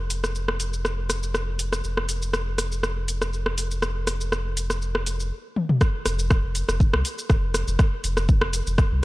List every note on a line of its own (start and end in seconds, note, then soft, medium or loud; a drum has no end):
0.00 1.82 F1 medium
0.10 open hi-hat medium
0.10 shaker medium
0.24 cross-stick medium
0.24 shaker soft
0.35 shaker soft
0.48 cross-stick medium
0.60 open hi-hat medium
0.60 shaker medium
0.73 shaker soft
0.85 cross-stick medium
0.85 shaker soft
1.10 cross-stick medium
1.10 open hi-hat medium
1.10 shaker medium
1.23 shaker soft
1.34 cross-stick medium
1.34 shaker soft
1.59 open hi-hat medium
1.59 shaker medium
1.73 cross-stick medium
1.73 shaker soft
1.84 5.31 F1 medium
1.84 shaker soft
1.97 cross-stick medium
2.09 open hi-hat medium
2.09 shaker medium
2.22 shaker soft
2.33 cross-stick medium
2.33 shaker soft
2.58 cross-stick medium
2.58 open hi-hat medium
2.58 shaker medium
2.72 shaker soft
2.83 cross-stick medium
2.83 shaker soft
3.08 open hi-hat medium
3.08 shaker medium
3.22 cross-stick medium
3.22 shaker soft
3.33 shaker soft
3.46 cross-stick medium
3.58 open hi-hat medium
3.58 shaker medium
3.71 shaker soft
3.82 cross-stick medium
3.82 shaker soft
4.07 cross-stick medium
4.07 open hi-hat medium
4.07 shaker medium
4.21 shaker soft
4.32 cross-stick medium
4.32 shaker soft
4.57 open hi-hat medium
4.57 shaker medium
4.70 cross-stick medium
4.70 shaker soft
4.82 shaker soft
4.95 cross-stick medium
5.06 open hi-hat medium
5.06 shaker medium
5.20 shaker soft
5.56 high tom medium
5.69 mid tom medium
5.81 kick loud
5.81 cross-stick loud
5.81 shaker soft
6.06 6.39 F1 loud
6.06 cross-stick medium
6.06 open hi-hat medium
6.06 shaker medium
6.19 shaker medium
6.30 kick loud
6.30 cross-stick loud
6.30 shaker soft
6.44 6.63 F1 loud
6.55 open hi-hat medium
6.55 shaker medium
6.68 6.88 F1 medium
6.68 cross-stick medium
6.68 shaker medium
6.80 kick loud
6.80 shaker soft
6.93 7.02 C2 medium
6.93 cross-stick loud
7.05 open hi-hat medium
7.05 shaker medium
7.18 shaker medium
7.30 7.63 F1 medium
7.30 kick loud
7.30 cross-stick medium
7.30 shaker soft
7.54 cross-stick medium
7.54 open hi-hat medium
7.54 shaker medium
7.68 7.77 F1 medium
7.68 shaker medium
7.79 kick loud
7.79 cross-stick loud
7.79 shaker soft
8.04 8.38 F1 loud
8.04 open hi-hat medium
8.04 shaker medium
8.17 cross-stick medium
8.17 shaker medium
8.29 kick loud
8.29 shaker soft
8.41 8.61 F1 loud
8.41 cross-stick loud
8.53 open hi-hat medium
8.53 shaker loud
8.67 8.86 F1 medium
8.67 shaker medium
8.78 kick loud
8.78 cross-stick loud
8.78 shaker soft
8.92 9.01 C2 medium